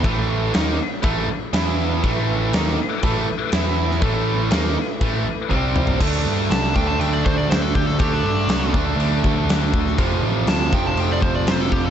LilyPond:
<<
  \new Staff \with { instrumentName = "Lead electric guitar" } { \time 4/4 \key d \dorian \tempo 4 = 121 r1 | r1 | r1 | r4 a''8 g''16 a''16 g''16 d''16 c''16 d''16 c''16 a'16 g'16 a'16 |
g'16 d'16 d'4 r2 r8 | r4 a''8 g''16 a''16 g''16 d''16 c''16 d''16 c''16 a'16 g'16 a'16 | }
  \new Staff \with { instrumentName = "Tonewheel organ" } { \time 4/4 \key d \dorian << { r1 | <a b'>2. e''4 | <a b'>2. <c' d''>4 | r1 |
r1 | r1 | } \\ { r1 | e'1 | e'2. g'4 | r1 |
r1 | r1 | } >> }
  \new Staff \with { instrumentName = "Distorted electric guitar" } { \clef bass \time 4/4 \key d \dorian <a, e a>4 <dis bes dis'>8 r8 <a, e a>8 r8 <e b e'>4 | <a, e a>4 <dis bes dis'>8 r8 <a, e a>8 r8 <e b e'>4 | <a, e a>4 <dis bes dis'>8 r8 <a, e a>8 r8 <c g c'>4 | <d a d'>2 <d a d'>2 |
<d a d'>2 <d a d'>2 | <f, c f>2 <f, c f>2 | }
  \new Staff \with { instrumentName = "Distorted electric guitar" } { \clef bass \time 4/4 \key d \dorian <a, e a>4 <dis bes dis'>8 r8 <a, e a>8 r8 <e b e'>4 | <a, e a>4 <dis bes dis'>8 r8 <a, e a>8 r8 <e b e'>4 | <a, e a>4 <dis bes dis'>8 r8 <a, e a>8 r8 <c g c'>4 | <d a d'>4. <d a d'>2~ <d a d'>8 |
<d a d'>4. <d a d'>2~ <d a d'>8 | <f, c f>4. <f, c f>2~ <f, c f>8 | }
  \new Staff \with { instrumentName = "Picked electric bass" } { \clef bass \time 4/4 \key d \dorian a,,4 dis,8 r8 a,,8 r8 e,4 | a,,4 dis,8 r8 a,,8 r8 e,4 | a,,4 dis,8 r8 a,,8 r8 c,4 | d,8 g,8 c,8 d,8 d,8 d,8 d,8 d,8 |
d,8 g,8 c,8 d,8 d,8 d,8 d,8 d,8 | f,,8 a,,8 d,8 f,,8 f,,8 f,,8 f,,8 f,,8 | }
  \new DrumStaff \with { instrumentName = "Drums" } \drummode { \time 4/4 <cymc bd>4 <cymc sn>4 <cymc bd>4 <cymc sn>4 | <cymc bd>4 <cymc sn>16 sn8. <cymc bd>4 <cymc sn>8. sn16 | <cymc bd>4 <cymc sn>16 sn8. <cymc bd>4 bd8 toml16 tomfh16 | <cymc bd>4 <cymc sn>16 sn16 bd8 cymc8 bd8 <cymc sn>8 bd16 sn16 |
<cymc bd>4 <cymc sn>8 bd8 cymc8 bd8 <cymc sn>8 bd16 sn16 | <cymc bd>4 <cymc sn>8 bd8 cymc8 bd8 <cymc sn>8 bd8 | }
>>